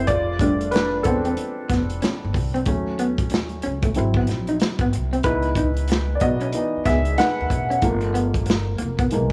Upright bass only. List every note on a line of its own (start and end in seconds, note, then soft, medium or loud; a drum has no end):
0.09 1.06 F1 loud
1.06 1.34 E1 medium
1.71 1.99 F1 medium
2.24 2.34 G1 medium
2.36 2.64 C2 medium
2.67 3.60 D#2 medium
3.66 3.93 C#2 medium
3.98 4.26 G#1 loud
4.31 4.58 A#1 medium
4.80 4.91 G#1 medium
4.95 5.23 C2 medium
5.25 6.18 C#2 medium
6.23 6.51 B1 medium
6.76 muted upright bass stroke soft
6.87 7.15 C#2 medium
7.41 7.50 D#2 medium
7.52 7.80 E1 medium
7.84 8.76 G1 medium
8.82 9.15 F1 medium
9.14 9.32 C2 loud